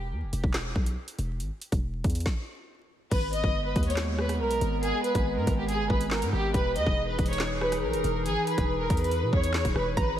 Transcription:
Already playing: 808-style bass E1
0.11 808-style bass E2
0.22 808-style bass E1
0.33 808-style bass E1, closed hi-hat
0.44 808-style bass E1, kick
0.54 snare, clap, closed hi-hat
0.76 808-style bass B1, kick
0.86 closed hi-hat
1.08 closed hi-hat
1.19 808-style bass E1, closed hi-hat
1.40 808-style bass G#1, closed hi-hat
1.61 closed hi-hat
1.72 808-style bass E1, kick, closed hi-hat
2.04 808-style bass E2, kick, closed hi-hat
2.10 closed hi-hat
2.15 closed hi-hat
2.20 closed hi-hat
2.26 kick, snare
3.11 808-style bass G#1, ambient pad G#3 B3, violin section B4, kick, closed hi-hat, crash
3.33 violin section D#5, closed hi-hat
3.44 808-style bass G1, kick
3.65 violin section B4
3.76 808-style bass D#2, kick, closed hi-hat
3.83 violin section C#5, closed hi-hat
3.90 closed hi-hat
3.96 snare, clap, closed hi-hat
4.19 violin section B4, cross-stick
4.29 cross-stick, closed hi-hat
4.40 808-style bass B1, violin section A#4
4.51 closed hi-hat
4.61 808-style bass G#1, closed hi-hat
4.83 violin section G#4, closed hi-hat
5.04 violin section B4, closed hi-hat
5.15 808-style bass G#1, kick, closed hi-hat
5.36 808-style bass G#2, violin section A#4
5.47 808-style bass G#1, kick, closed hi-hat
5.58 violin section G4
5.68 violin section G#4, closed hi-hat
5.79 808-style bass G1
5.90 808-style bass G#1, violin section B4, kick
6.01 closed hi-hat
6.11 violin section A#4, snare, clap
6.22 808-style bass G#2, closed hi-hat
6.33 808-style bass G#1, violin section G4
6.54 808-style bass E1, ambient pad E3 D#4 G#4, violin section B4, kick, closed hi-hat
6.76 808-style bass E2, violin section D#5, closed hi-hat
6.86 808-style bass E1, kick
7.08 violin section B4
7.19 808-style bass E1, kick, closed hi-hat
7.26 violin section C#5, closed hi-hat
7.33 closed hi-hat
7.39 snare, clap, closed hi-hat
7.61 violin section B4, cross-stick
7.72 cross-stick, closed hi-hat
7.83 808-style bass B1, violin section A#4
7.93 808-style bass E1, closed hi-hat
8.04 808-style bass E1, closed hi-hat
8.26 808-style bass G#1, violin section G#4, closed hi-hat
8.47 violin section B4, closed hi-hat
8.58 808-style bass E1, kick, closed hi-hat
8.79 violin section A#4
8.90 808-style bass E2, kick, closed hi-hat
8.97 violin section B4, closed hi-hat
9.04 closed hi-hat
9.11 closed hi-hat
9.22 808-style bass B2
9.33 808-style bass E2, violin section C#5, kick
9.44 closed hi-hat
9.54 snare, clap
9.65 808-style bass D#1, kick, closed hi-hat
9.76 808-style bass E1, violin section B4, cross-stick
9.97 808-style bass G#1, ambient pad G#3 B3, violin section B4, synth pluck A#5, kick, closed hi-hat

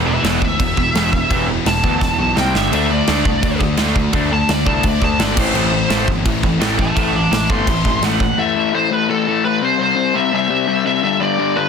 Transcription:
Already playing: picked electric bass E1, distorted electric guitar E3 B3 E4 G4
0.06 overdriven electric guitar E2 B2, lead electric guitar B4 E5
0.23 picked electric bass E1, overdriven electric guitar E2 B2 E3, lead electric guitar A4 D5, snare, crash
0.41 picked electric bass D2, overdriven electric guitar E2 B2, lead electric guitar E5, kick
0.59 picked electric bass E1, overdriven electric guitar E2 B2, kick, crash
0.76 picked electric bass E1, overdriven electric guitar E2 B2, distorted electric guitar E3 B3 E4 G4, kick
0.95 picked electric bass E1, overdriven electric guitar E2 B2 E3, distorted electric guitar E3 B3 E4 G4, snare, crash
1.13 overdriven electric guitar E2 B2, kick
1.30 picked electric bass E1, overdriven electric guitar E2 B2 E3, distorted electric guitar E3 B3 E4 G4, kick, crash
1.47 overdriven electric guitar E2 B2
1.65 picked electric bass E1, overdriven electric guitar E2 B2, lead electric guitar A5, snare, crash
1.83 picked electric bass D2, overdriven electric guitar E2 B2 E3, kick
2.01 picked electric bass E1, overdriven electric guitar E2 B2, kick, snare
2.18 picked electric bass B1, overdriven electric guitar E2 B2, distorted electric guitar E3 B3 E4 G4
2.36 picked electric bass C2, overdriven electric guitar C3 G3 C4, lead electric guitar G5, snare
2.54 picked electric bass G1, overdriven electric guitar G2 D3 G3, lead electric guitar E5, snare
2.72 picked electric bass D2, distorted electric guitar D3 A3 D4 F#4, overdriven electric guitar D3 A3 D4, lead electric guitar E5, crash
2.91 overdriven electric guitar D3 A3, lead electric guitar D5
3.07 picked electric bass D2, overdriven electric guitar D3 A3 D4, snare, crash
3.25 picked electric bass C2, overdriven electric guitar D3 A3, kick
3.43 picked electric bass D2, overdriven electric guitar D3 A3, kick, crash
3.60 picked electric bass D2, overdriven electric guitar D3 A3, distorted electric guitar D3 A3 D4 F#4, kick
3.77 picked electric bass D2, distorted electric guitar D3 A3 D4 F#4, overdriven electric guitar D3 A3 D4, snare, crash
3.96 overdriven electric guitar D3 A3, kick
4.13 picked electric bass D2, distorted electric guitar D3 A3 D4 F#4, overdriven electric guitar D3 A3 D4, kick, crash
4.32 overdriven electric guitar D3 A3, lead electric guitar A5
4.49 picked electric bass D2, overdriven electric guitar D3 A3, lead electric guitar D5, snare, crash
4.66 picked electric bass C2, overdriven electric guitar D3 A3 D4, lead electric guitar A5, kick
4.83 picked electric bass D2, overdriven electric guitar D3 A3, lead electric guitar D5, kick, crash
5.00 picked electric bass D2, overdriven electric guitar D3 A3, distorted electric guitar D3 A3 D4 F#4, lead electric guitar A5, kick
5.17 picked electric bass G1, distorted electric guitar D3 A3 D4 F#4, overdriven electric guitar D3 A3 D4, lead electric guitar D5, snare, crash
5.36 picked electric bass A1, distorted electric guitar A2 E3 A3 C4 E4, overdriven electric guitar A2 E3 A3, lead electric guitar C5, kick, crash
5.54 picked electric bass A1, overdriven electric guitar A2 E3 A3, crash
5.72 overdriven electric guitar A2 E3
5.90 picked electric bass A1, overdriven electric guitar A2 E3 A3, snare, crash
6.08 picked electric bass G1, overdriven electric guitar A2 E3, kick
6.25 picked electric bass A1, distorted electric guitar A2 E3 A3 C4 E4, overdriven electric guitar A2 E3, kick, crash
6.42 picked electric bass A1, overdriven electric guitar A2 E3, distorted electric guitar A2 E3 A3 C4 E4, kick
6.60 picked electric bass A1, overdriven electric guitar A2 E3 A3, snare, crash
6.78 overdriven electric guitar A2 E3, distorted electric guitar A2 E3 A3 C4 E4, lead electric guitar E5 A5, kick
6.96 picked electric bass A1, overdriven electric guitar A2 E3 A3, lead electric guitar E5 A5, kick, crash
7.14 overdriven electric guitar A2 E3, lead electric guitar A5 D6
7.31 picked electric bass A1, overdriven electric guitar A2 E3, lead electric guitar A5 D6, snare, crash
7.49 picked electric bass G1, overdriven electric guitar A2 E3 A3, lead electric guitar C6, kick
7.67 picked electric bass A1, overdriven electric guitar A2 E3, distorted electric guitar A2 E3 A3 C4 E4, kick, crash
7.85 picked electric bass A1, overdriven electric guitar A2 E3, distorted electric guitar A2 E3 A3 C4 E4, kick
8.02 picked electric bass A1, overdriven electric guitar A2 E3 A3, lead electric guitar F#5, snare, crash
8.20 overdriven electric guitar A2 E3, kick
8.38 overdriven electric guitar A2 E3 A3, lead electric guitar E5
8.55 overdriven electric guitar A2 E3 A3
8.73 overdriven electric guitar A2 E3 A3, lead electric guitar C5
8.91 overdriven electric guitar A2 E3 A3, lead electric guitar B4
9.09 overdriven electric guitar A2 E3 A3, lead electric guitar A4
9.27 overdriven electric guitar A2 E3 A3
9.45 overdriven electric guitar A2 E3 A3, lead electric guitar B4
9.62 overdriven electric guitar C3 G3 C4, lead electric guitar C5
9.79 overdriven electric guitar C3 G3 C4, lead electric guitar C5
9.96 overdriven electric guitar C3 G3 C4
10.14 overdriven electric guitar C3 G3 C4, lead electric guitar E5
10.32 overdriven electric guitar C3 G3 C4, lead electric guitar E5
10.49 overdriven electric guitar C3 G3 C4
10.67 overdriven electric guitar C3 G3 C4
10.85 overdriven electric guitar C3 G3 C4, lead electric guitar E5
11.02 overdriven electric guitar G2 D3 G3, lead electric guitar E5
11.20 overdriven electric guitar G2 D3 G3, lead electric guitar D5
11.39 overdriven electric guitar G2 D3 G3
11.56 overdriven electric guitar G2 D3 G3, lead electric guitar B4

